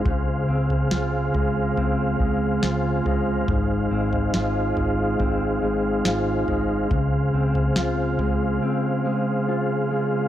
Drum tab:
SD |----o-------o---|----o-------o---|----o-----------|
FT |o--o--o-o-----o-|o--o--o-o-----o-|o--o--o---------|
BD |o---------o-----|o-------o-------|o---------------|